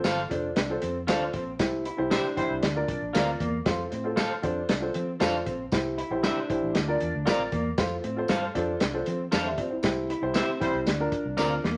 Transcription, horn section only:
0, 0, Header, 1, 2, 480
1, 0, Start_track
1, 0, Key_signature, -1, "major"
1, 0, Tempo, 515021
1, 1492, Time_signature, 4, 2, 24, 8
1, 10971, End_track
2, 0, Start_track
2, 0, Title_t, "Horn section"
2, 0, Program_c, 0, 61
2, 1973, Note_on_c, 0, 55, 82
2, 1974, Note_on_c, 0, 64, 85
2, 1975, Note_on_c, 0, 60, 88
2, 1975, Note_on_c, 0, 72, 96
2, 2075, Note_off_c, 0, 55, 0
2, 2075, Note_off_c, 0, 64, 0
2, 2076, Note_off_c, 0, 60, 0
2, 2076, Note_off_c, 0, 72, 0
2, 2203, Note_on_c, 0, 64, 101
2, 2206, Note_on_c, 0, 60, 93
2, 2206, Note_on_c, 0, 72, 101
2, 2207, Note_on_c, 0, 55, 89
2, 2359, Note_off_c, 0, 64, 0
2, 2361, Note_off_c, 0, 60, 0
2, 2361, Note_off_c, 0, 72, 0
2, 2362, Note_off_c, 0, 55, 0
2, 9653, Note_on_c, 0, 60, 86
2, 9653, Note_on_c, 0, 72, 93
2, 9655, Note_on_c, 0, 55, 77
2, 9656, Note_on_c, 0, 64, 83
2, 9753, Note_off_c, 0, 60, 0
2, 9753, Note_off_c, 0, 72, 0
2, 9755, Note_off_c, 0, 55, 0
2, 9755, Note_off_c, 0, 64, 0
2, 9894, Note_on_c, 0, 55, 92
2, 9894, Note_on_c, 0, 64, 102
2, 9902, Note_on_c, 0, 60, 93
2, 9902, Note_on_c, 0, 72, 102
2, 10046, Note_off_c, 0, 55, 0
2, 10046, Note_off_c, 0, 64, 0
2, 10051, Note_off_c, 0, 60, 0
2, 10051, Note_off_c, 0, 72, 0
2, 10971, End_track
0, 0, End_of_file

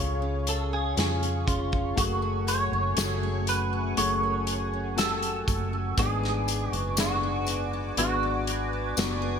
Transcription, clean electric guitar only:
0, 0, Header, 1, 2, 480
1, 0, Start_track
1, 0, Key_signature, 3, "minor"
1, 0, Tempo, 1000000
1, 947, Time_signature, 4, 2, 24, 8
1, 4510, End_track
2, 0, Start_track
2, 0, Title_t, "Clean electric guitar"
2, 0, Program_c, 0, 27
2, 0, Note_on_c, 0, 73, 93
2, 234, Note_on_c, 0, 69, 76
2, 244, Note_off_c, 0, 73, 0
2, 342, Note_off_c, 0, 69, 0
2, 351, Note_on_c, 0, 68, 95
2, 704, Note_off_c, 0, 68, 0
2, 706, Note_on_c, 0, 65, 75
2, 948, Note_off_c, 0, 65, 0
2, 950, Note_on_c, 0, 66, 92
2, 1192, Note_on_c, 0, 73, 98
2, 1195, Note_off_c, 0, 66, 0
2, 1673, Note_off_c, 0, 73, 0
2, 1675, Note_on_c, 0, 71, 88
2, 1894, Note_off_c, 0, 71, 0
2, 1909, Note_on_c, 0, 73, 87
2, 2390, Note_off_c, 0, 73, 0
2, 2392, Note_on_c, 0, 69, 82
2, 2874, Note_off_c, 0, 69, 0
2, 2876, Note_on_c, 0, 68, 89
2, 3222, Note_off_c, 0, 68, 0
2, 3222, Note_on_c, 0, 66, 89
2, 3358, Note_off_c, 0, 66, 0
2, 3360, Note_on_c, 0, 66, 79
2, 3826, Note_off_c, 0, 66, 0
2, 3832, Note_on_c, 0, 66, 66
2, 4510, Note_off_c, 0, 66, 0
2, 4510, End_track
0, 0, End_of_file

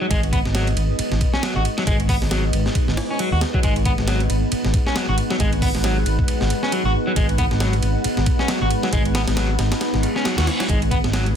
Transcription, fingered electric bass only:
0, 0, Header, 1, 3, 480
1, 0, Start_track
1, 0, Key_signature, 5, "minor"
1, 0, Tempo, 441176
1, 119, Time_signature, 4, 2, 24, 8
1, 12362, End_track
2, 0, Start_track
2, 0, Title_t, "Fingered electric bass"
2, 0, Program_c, 0, 33
2, 117, Note_on_c, 0, 32, 99
2, 447, Note_off_c, 0, 32, 0
2, 497, Note_on_c, 0, 32, 84
2, 803, Note_off_c, 0, 32, 0
2, 833, Note_on_c, 0, 32, 93
2, 944, Note_off_c, 0, 32, 0
2, 1214, Note_on_c, 0, 32, 85
2, 1295, Note_off_c, 0, 32, 0
2, 1693, Note_on_c, 0, 32, 100
2, 1774, Note_off_c, 0, 32, 0
2, 2035, Note_on_c, 0, 32, 98
2, 2366, Note_off_c, 0, 32, 0
2, 2410, Note_on_c, 0, 32, 90
2, 2719, Note_off_c, 0, 32, 0
2, 2755, Note_on_c, 0, 32, 90
2, 2865, Note_off_c, 0, 32, 0
2, 3135, Note_on_c, 0, 32, 83
2, 3215, Note_off_c, 0, 32, 0
2, 3614, Note_on_c, 0, 39, 98
2, 3695, Note_off_c, 0, 39, 0
2, 3954, Note_on_c, 0, 32, 100
2, 4286, Note_off_c, 0, 32, 0
2, 4336, Note_on_c, 0, 32, 84
2, 4642, Note_off_c, 0, 32, 0
2, 4677, Note_on_c, 0, 32, 96
2, 4786, Note_off_c, 0, 32, 0
2, 5058, Note_on_c, 0, 32, 86
2, 5137, Note_off_c, 0, 32, 0
2, 5535, Note_on_c, 0, 32, 100
2, 5615, Note_off_c, 0, 32, 0
2, 5875, Note_on_c, 0, 32, 106
2, 6207, Note_off_c, 0, 32, 0
2, 6256, Note_on_c, 0, 32, 91
2, 6562, Note_off_c, 0, 32, 0
2, 6597, Note_on_c, 0, 32, 93
2, 6706, Note_off_c, 0, 32, 0
2, 6976, Note_on_c, 0, 32, 89
2, 7056, Note_off_c, 0, 32, 0
2, 7451, Note_on_c, 0, 32, 100
2, 7533, Note_off_c, 0, 32, 0
2, 7795, Note_on_c, 0, 32, 100
2, 8126, Note_off_c, 0, 32, 0
2, 8173, Note_on_c, 0, 32, 90
2, 8481, Note_off_c, 0, 32, 0
2, 8518, Note_on_c, 0, 32, 87
2, 8626, Note_off_c, 0, 32, 0
2, 8896, Note_on_c, 0, 32, 88
2, 8975, Note_off_c, 0, 32, 0
2, 9375, Note_on_c, 0, 32, 99
2, 9455, Note_off_c, 0, 32, 0
2, 9714, Note_on_c, 0, 32, 99
2, 10046, Note_off_c, 0, 32, 0
2, 10096, Note_on_c, 0, 32, 90
2, 10402, Note_off_c, 0, 32, 0
2, 10436, Note_on_c, 0, 32, 92
2, 10545, Note_off_c, 0, 32, 0
2, 10816, Note_on_c, 0, 32, 86
2, 10896, Note_off_c, 0, 32, 0
2, 11293, Note_on_c, 0, 39, 93
2, 11374, Note_off_c, 0, 39, 0
2, 11636, Note_on_c, 0, 32, 97
2, 11967, Note_off_c, 0, 32, 0
2, 12014, Note_on_c, 0, 32, 89
2, 12321, Note_off_c, 0, 32, 0
2, 12362, End_track
3, 0, Start_track
3, 0, Title_t, "Muted fingered electric bass strokes"
3, 1077, Note_on_c, 9, 29, 40
3, 1186, Note_off_c, 9, 29, 0
3, 4919, Note_on_c, 9, 29, 42
3, 5028, Note_off_c, 9, 29, 0
3, 8758, Note_on_c, 9, 29, 42
3, 8867, Note_off_c, 9, 29, 0
3, 12362, End_track
0, 0, End_of_file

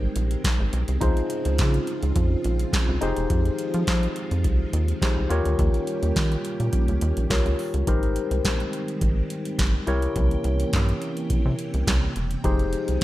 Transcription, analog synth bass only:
0, 0, Header, 1, 2, 480
1, 0, Start_track
1, 0, Key_signature, -4, "major"
1, 0, Tempo, 571429
1, 853, Time_signature, 4, 2, 24, 8
1, 10953, End_track
2, 0, Start_track
2, 0, Title_t, "Analog synth bass"
2, 0, Program_c, 0, 38
2, 134, Note_on_c, 0, 34, 88
2, 302, Note_off_c, 0, 34, 0
2, 501, Note_on_c, 0, 32, 101
2, 580, Note_off_c, 0, 32, 0
2, 614, Note_on_c, 0, 35, 93
2, 703, Note_off_c, 0, 35, 0
2, 743, Note_on_c, 0, 36, 84
2, 821, Note_off_c, 0, 36, 0
2, 854, Note_on_c, 0, 37, 109
2, 943, Note_off_c, 0, 37, 0
2, 1223, Note_on_c, 0, 37, 93
2, 1335, Note_on_c, 0, 49, 95
2, 1348, Note_off_c, 0, 37, 0
2, 1503, Note_off_c, 0, 49, 0
2, 1704, Note_on_c, 0, 37, 89
2, 1782, Note_off_c, 0, 37, 0
2, 1813, Note_on_c, 0, 41, 103
2, 1982, Note_off_c, 0, 41, 0
2, 2058, Note_on_c, 0, 34, 102
2, 2225, Note_off_c, 0, 34, 0
2, 2425, Note_on_c, 0, 36, 93
2, 2503, Note_off_c, 0, 36, 0
2, 2538, Note_on_c, 0, 29, 90
2, 2626, Note_off_c, 0, 29, 0
2, 2665, Note_on_c, 0, 28, 99
2, 2743, Note_off_c, 0, 28, 0
2, 2773, Note_on_c, 0, 41, 109
2, 2942, Note_off_c, 0, 41, 0
2, 3144, Note_on_c, 0, 53, 95
2, 3222, Note_off_c, 0, 53, 0
2, 3256, Note_on_c, 0, 53, 89
2, 3424, Note_off_c, 0, 53, 0
2, 3623, Note_on_c, 0, 41, 81
2, 3734, Note_on_c, 0, 36, 106
2, 3746, Note_off_c, 0, 41, 0
2, 3902, Note_off_c, 0, 36, 0
2, 3975, Note_on_c, 0, 39, 102
2, 4143, Note_off_c, 0, 39, 0
2, 4344, Note_on_c, 0, 36, 93
2, 4422, Note_off_c, 0, 36, 0
2, 4456, Note_on_c, 0, 39, 105
2, 4544, Note_off_c, 0, 39, 0
2, 4584, Note_on_c, 0, 38, 95
2, 4662, Note_off_c, 0, 38, 0
2, 4695, Note_on_c, 0, 39, 124
2, 4784, Note_off_c, 0, 39, 0
2, 5063, Note_on_c, 0, 39, 86
2, 5142, Note_off_c, 0, 39, 0
2, 5177, Note_on_c, 0, 51, 97
2, 5344, Note_off_c, 0, 51, 0
2, 5544, Note_on_c, 0, 46, 82
2, 5622, Note_off_c, 0, 46, 0
2, 5785, Note_on_c, 0, 37, 85
2, 5863, Note_off_c, 0, 37, 0
2, 5897, Note_on_c, 0, 39, 113
2, 5985, Note_off_c, 0, 39, 0
2, 6024, Note_on_c, 0, 34, 76
2, 6102, Note_off_c, 0, 34, 0
2, 6134, Note_on_c, 0, 36, 105
2, 6223, Note_off_c, 0, 36, 0
2, 6262, Note_on_c, 0, 37, 103
2, 6341, Note_off_c, 0, 37, 0
2, 6501, Note_on_c, 0, 37, 96
2, 6580, Note_off_c, 0, 37, 0
2, 6614, Note_on_c, 0, 32, 102
2, 6872, Note_off_c, 0, 32, 0
2, 6981, Note_on_c, 0, 36, 93
2, 7060, Note_off_c, 0, 36, 0
2, 7095, Note_on_c, 0, 34, 89
2, 7263, Note_off_c, 0, 34, 0
2, 7573, Note_on_c, 0, 32, 97
2, 7742, Note_off_c, 0, 32, 0
2, 8054, Note_on_c, 0, 31, 99
2, 8222, Note_off_c, 0, 31, 0
2, 8294, Note_on_c, 0, 36, 92
2, 8462, Note_off_c, 0, 36, 0
2, 8534, Note_on_c, 0, 36, 117
2, 8702, Note_off_c, 0, 36, 0
2, 8774, Note_on_c, 0, 36, 99
2, 8943, Note_off_c, 0, 36, 0
2, 9016, Note_on_c, 0, 43, 96
2, 9184, Note_off_c, 0, 43, 0
2, 9493, Note_on_c, 0, 48, 47
2, 9544, Note_off_c, 0, 48, 0
2, 9622, Note_on_c, 0, 48, 93
2, 9701, Note_off_c, 0, 48, 0
2, 9862, Note_on_c, 0, 36, 88
2, 9941, Note_off_c, 0, 36, 0
2, 9973, Note_on_c, 0, 36, 97
2, 10142, Note_off_c, 0, 36, 0
2, 10216, Note_on_c, 0, 28, 85
2, 10384, Note_off_c, 0, 28, 0
2, 10452, Note_on_c, 0, 29, 114
2, 10710, Note_off_c, 0, 29, 0
2, 10824, Note_on_c, 0, 36, 72
2, 10902, Note_off_c, 0, 36, 0
2, 10953, End_track
0, 0, End_of_file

